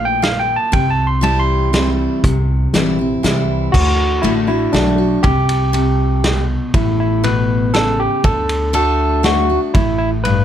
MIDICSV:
0, 0, Header, 1, 5, 480
1, 0, Start_track
1, 0, Tempo, 500417
1, 700, Time_signature, 3, 2, 24, 8
1, 10021, End_track
2, 0, Start_track
2, 0, Title_t, "Tine electric piano"
2, 0, Program_c, 0, 4
2, 50, Note_on_c, 0, 79, 96
2, 209, Note_off_c, 0, 79, 0
2, 220, Note_on_c, 0, 77, 87
2, 375, Note_off_c, 0, 77, 0
2, 379, Note_on_c, 0, 79, 91
2, 535, Note_off_c, 0, 79, 0
2, 541, Note_on_c, 0, 81, 85
2, 696, Note_off_c, 0, 81, 0
2, 701, Note_on_c, 0, 79, 89
2, 856, Note_off_c, 0, 79, 0
2, 867, Note_on_c, 0, 81, 85
2, 1019, Note_off_c, 0, 81, 0
2, 1026, Note_on_c, 0, 84, 79
2, 1179, Note_off_c, 0, 84, 0
2, 1183, Note_on_c, 0, 81, 91
2, 1337, Note_off_c, 0, 81, 0
2, 1338, Note_on_c, 0, 84, 96
2, 1806, Note_off_c, 0, 84, 0
2, 3569, Note_on_c, 0, 66, 102
2, 4046, Note_on_c, 0, 64, 100
2, 4072, Note_off_c, 0, 66, 0
2, 4159, Note_off_c, 0, 64, 0
2, 4297, Note_on_c, 0, 64, 94
2, 4533, Note_on_c, 0, 62, 91
2, 4548, Note_off_c, 0, 64, 0
2, 5015, Note_on_c, 0, 67, 106
2, 5033, Note_off_c, 0, 62, 0
2, 6181, Note_off_c, 0, 67, 0
2, 6468, Note_on_c, 0, 64, 87
2, 6701, Note_off_c, 0, 64, 0
2, 6713, Note_on_c, 0, 64, 74
2, 6945, Note_on_c, 0, 71, 94
2, 6955, Note_off_c, 0, 64, 0
2, 7421, Note_on_c, 0, 69, 104
2, 7438, Note_off_c, 0, 71, 0
2, 7669, Note_off_c, 0, 69, 0
2, 7670, Note_on_c, 0, 67, 87
2, 7908, Note_on_c, 0, 69, 98
2, 7914, Note_off_c, 0, 67, 0
2, 8380, Note_off_c, 0, 69, 0
2, 8391, Note_on_c, 0, 69, 99
2, 8872, Note_on_c, 0, 66, 102
2, 8881, Note_off_c, 0, 69, 0
2, 9202, Note_off_c, 0, 66, 0
2, 9341, Note_on_c, 0, 64, 99
2, 9565, Note_off_c, 0, 64, 0
2, 9576, Note_on_c, 0, 64, 76
2, 9685, Note_off_c, 0, 64, 0
2, 9819, Note_on_c, 0, 71, 99
2, 10021, Note_off_c, 0, 71, 0
2, 10021, End_track
3, 0, Start_track
3, 0, Title_t, "Steel-string acoustic guitar"
3, 0, Program_c, 1, 25
3, 0, Note_on_c, 1, 45, 103
3, 0, Note_on_c, 1, 46, 88
3, 170, Note_off_c, 1, 46, 0
3, 196, Note_off_c, 1, 45, 0
3, 214, Note_on_c, 1, 46, 78
3, 674, Note_off_c, 1, 46, 0
3, 690, Note_on_c, 1, 48, 94
3, 1163, Note_on_c, 1, 52, 96
3, 1174, Note_on_c, 1, 55, 97
3, 1176, Note_on_c, 1, 60, 109
3, 1181, Note_on_c, 1, 64, 113
3, 1609, Note_off_c, 1, 48, 0
3, 1629, Note_off_c, 1, 52, 0
3, 1634, Note_off_c, 1, 55, 0
3, 1636, Note_off_c, 1, 60, 0
3, 1638, Note_off_c, 1, 64, 0
3, 1658, Note_on_c, 1, 52, 76
3, 1662, Note_on_c, 1, 55, 88
3, 1667, Note_on_c, 1, 60, 93
3, 1672, Note_on_c, 1, 64, 92
3, 2117, Note_off_c, 1, 52, 0
3, 2119, Note_off_c, 1, 55, 0
3, 2121, Note_off_c, 1, 60, 0
3, 2124, Note_off_c, 1, 64, 0
3, 2149, Note_on_c, 1, 48, 83
3, 2626, Note_on_c, 1, 52, 91
3, 2630, Note_on_c, 1, 55, 94
3, 2641, Note_on_c, 1, 60, 102
3, 2646, Note_on_c, 1, 64, 107
3, 2854, Note_off_c, 1, 64, 0
3, 2856, Note_off_c, 1, 52, 0
3, 2857, Note_off_c, 1, 55, 0
3, 2863, Note_off_c, 1, 60, 0
3, 2866, Note_on_c, 1, 64, 57
3, 2889, Note_on_c, 1, 60, 54
3, 3059, Note_off_c, 1, 48, 0
3, 3095, Note_off_c, 1, 64, 0
3, 3100, Note_off_c, 1, 60, 0
3, 3100, Note_on_c, 1, 52, 87
3, 3109, Note_on_c, 1, 55, 83
3, 3112, Note_on_c, 1, 60, 83
3, 3116, Note_on_c, 1, 64, 102
3, 3558, Note_off_c, 1, 52, 0
3, 3563, Note_off_c, 1, 55, 0
3, 3564, Note_off_c, 1, 60, 0
3, 3566, Note_off_c, 1, 64, 0
3, 3589, Note_on_c, 1, 50, 89
3, 4045, Note_off_c, 1, 50, 0
3, 4056, Note_on_c, 1, 50, 94
3, 4064, Note_on_c, 1, 57, 106
3, 4068, Note_on_c, 1, 62, 101
3, 4073, Note_on_c, 1, 66, 99
3, 4278, Note_off_c, 1, 66, 0
3, 4290, Note_on_c, 1, 66, 61
3, 4291, Note_off_c, 1, 50, 0
3, 4295, Note_off_c, 1, 57, 0
3, 4297, Note_off_c, 1, 62, 0
3, 4311, Note_on_c, 1, 62, 47
3, 4528, Note_off_c, 1, 66, 0
3, 4534, Note_off_c, 1, 62, 0
3, 4534, Note_on_c, 1, 50, 88
3, 4537, Note_on_c, 1, 57, 86
3, 4545, Note_on_c, 1, 62, 79
3, 4550, Note_on_c, 1, 66, 96
3, 4767, Note_off_c, 1, 66, 0
3, 4770, Note_off_c, 1, 50, 0
3, 4771, Note_off_c, 1, 57, 0
3, 4775, Note_off_c, 1, 62, 0
3, 4778, Note_on_c, 1, 66, 55
3, 4795, Note_on_c, 1, 62, 46
3, 5012, Note_off_c, 1, 66, 0
3, 5020, Note_off_c, 1, 62, 0
3, 5020, Note_on_c, 1, 48, 86
3, 5486, Note_off_c, 1, 48, 0
3, 5497, Note_on_c, 1, 48, 102
3, 5957, Note_off_c, 1, 48, 0
3, 5985, Note_on_c, 1, 47, 86
3, 6441, Note_off_c, 1, 47, 0
3, 6467, Note_on_c, 1, 45, 95
3, 6940, Note_on_c, 1, 47, 101
3, 7377, Note_off_c, 1, 45, 0
3, 7398, Note_off_c, 1, 47, 0
3, 7422, Note_on_c, 1, 49, 82
3, 7878, Note_off_c, 1, 49, 0
3, 7911, Note_on_c, 1, 50, 95
3, 8364, Note_off_c, 1, 50, 0
3, 8375, Note_on_c, 1, 50, 106
3, 8382, Note_on_c, 1, 57, 99
3, 8388, Note_on_c, 1, 62, 113
3, 8390, Note_on_c, 1, 66, 101
3, 8834, Note_off_c, 1, 50, 0
3, 8838, Note_off_c, 1, 57, 0
3, 8841, Note_off_c, 1, 62, 0
3, 8842, Note_off_c, 1, 66, 0
3, 8855, Note_on_c, 1, 50, 87
3, 8862, Note_on_c, 1, 57, 93
3, 8865, Note_on_c, 1, 62, 106
3, 8870, Note_on_c, 1, 66, 91
3, 9088, Note_off_c, 1, 50, 0
3, 9092, Note_off_c, 1, 57, 0
3, 9093, Note_off_c, 1, 62, 0
3, 9096, Note_off_c, 1, 66, 0
3, 9108, Note_on_c, 1, 66, 54
3, 9120, Note_on_c, 1, 62, 43
3, 9335, Note_off_c, 1, 66, 0
3, 9341, Note_off_c, 1, 62, 0
3, 9354, Note_on_c, 1, 45, 88
3, 9834, Note_on_c, 1, 43, 98
3, 10021, Note_off_c, 1, 43, 0
3, 10021, Note_off_c, 1, 45, 0
3, 10021, End_track
4, 0, Start_track
4, 0, Title_t, "Upright bass"
4, 0, Program_c, 2, 32
4, 0, Note_on_c, 2, 34, 100
4, 527, Note_off_c, 2, 34, 0
4, 699, Note_on_c, 2, 36, 92
4, 1970, Note_off_c, 2, 36, 0
4, 2145, Note_on_c, 2, 36, 101
4, 2567, Note_off_c, 2, 36, 0
4, 2621, Note_on_c, 2, 34, 83
4, 3031, Note_off_c, 2, 34, 0
4, 3097, Note_on_c, 2, 36, 78
4, 3508, Note_off_c, 2, 36, 0
4, 3585, Note_on_c, 2, 38, 98
4, 4008, Note_off_c, 2, 38, 0
4, 4059, Note_on_c, 2, 33, 82
4, 4469, Note_off_c, 2, 33, 0
4, 4544, Note_on_c, 2, 35, 90
4, 4952, Note_off_c, 2, 35, 0
4, 5022, Note_on_c, 2, 36, 102
4, 6291, Note_off_c, 2, 36, 0
4, 6463, Note_on_c, 2, 33, 96
4, 7731, Note_off_c, 2, 33, 0
4, 7902, Note_on_c, 2, 38, 98
4, 9169, Note_off_c, 2, 38, 0
4, 9347, Note_on_c, 2, 33, 88
4, 10021, Note_off_c, 2, 33, 0
4, 10021, End_track
5, 0, Start_track
5, 0, Title_t, "Drums"
5, 224, Note_on_c, 9, 38, 86
5, 224, Note_on_c, 9, 51, 57
5, 320, Note_off_c, 9, 38, 0
5, 320, Note_off_c, 9, 51, 0
5, 702, Note_on_c, 9, 51, 67
5, 703, Note_on_c, 9, 36, 100
5, 798, Note_off_c, 9, 51, 0
5, 799, Note_off_c, 9, 36, 0
5, 1185, Note_on_c, 9, 51, 56
5, 1281, Note_off_c, 9, 51, 0
5, 1666, Note_on_c, 9, 38, 84
5, 1666, Note_on_c, 9, 51, 62
5, 1762, Note_off_c, 9, 38, 0
5, 1762, Note_off_c, 9, 51, 0
5, 2147, Note_on_c, 9, 36, 117
5, 2149, Note_on_c, 9, 42, 61
5, 2243, Note_off_c, 9, 36, 0
5, 2244, Note_off_c, 9, 42, 0
5, 2626, Note_on_c, 9, 38, 81
5, 2626, Note_on_c, 9, 42, 62
5, 2722, Note_off_c, 9, 38, 0
5, 2722, Note_off_c, 9, 42, 0
5, 3109, Note_on_c, 9, 38, 79
5, 3109, Note_on_c, 9, 42, 66
5, 3205, Note_off_c, 9, 38, 0
5, 3205, Note_off_c, 9, 42, 0
5, 3588, Note_on_c, 9, 36, 109
5, 3591, Note_on_c, 9, 49, 108
5, 3684, Note_off_c, 9, 36, 0
5, 3687, Note_off_c, 9, 49, 0
5, 4070, Note_on_c, 9, 51, 59
5, 4166, Note_off_c, 9, 51, 0
5, 4550, Note_on_c, 9, 38, 90
5, 4550, Note_on_c, 9, 51, 57
5, 4646, Note_off_c, 9, 38, 0
5, 4646, Note_off_c, 9, 51, 0
5, 5026, Note_on_c, 9, 36, 125
5, 5027, Note_on_c, 9, 51, 63
5, 5122, Note_off_c, 9, 36, 0
5, 5123, Note_off_c, 9, 51, 0
5, 5265, Note_on_c, 9, 51, 68
5, 5361, Note_off_c, 9, 51, 0
5, 5506, Note_on_c, 9, 51, 65
5, 5602, Note_off_c, 9, 51, 0
5, 5986, Note_on_c, 9, 38, 86
5, 5986, Note_on_c, 9, 51, 69
5, 6081, Note_off_c, 9, 38, 0
5, 6081, Note_off_c, 9, 51, 0
5, 6465, Note_on_c, 9, 36, 119
5, 6465, Note_on_c, 9, 51, 74
5, 6561, Note_off_c, 9, 36, 0
5, 6561, Note_off_c, 9, 51, 0
5, 6946, Note_on_c, 9, 51, 65
5, 7042, Note_off_c, 9, 51, 0
5, 7428, Note_on_c, 9, 38, 91
5, 7428, Note_on_c, 9, 51, 61
5, 7524, Note_off_c, 9, 38, 0
5, 7524, Note_off_c, 9, 51, 0
5, 7903, Note_on_c, 9, 51, 58
5, 7906, Note_on_c, 9, 36, 113
5, 7999, Note_off_c, 9, 51, 0
5, 8002, Note_off_c, 9, 36, 0
5, 8146, Note_on_c, 9, 51, 66
5, 8241, Note_off_c, 9, 51, 0
5, 8380, Note_on_c, 9, 51, 61
5, 8476, Note_off_c, 9, 51, 0
5, 8863, Note_on_c, 9, 38, 86
5, 8863, Note_on_c, 9, 51, 54
5, 8959, Note_off_c, 9, 38, 0
5, 8959, Note_off_c, 9, 51, 0
5, 9348, Note_on_c, 9, 51, 64
5, 9349, Note_on_c, 9, 36, 118
5, 9444, Note_off_c, 9, 51, 0
5, 9445, Note_off_c, 9, 36, 0
5, 9830, Note_on_c, 9, 51, 64
5, 9926, Note_off_c, 9, 51, 0
5, 10021, End_track
0, 0, End_of_file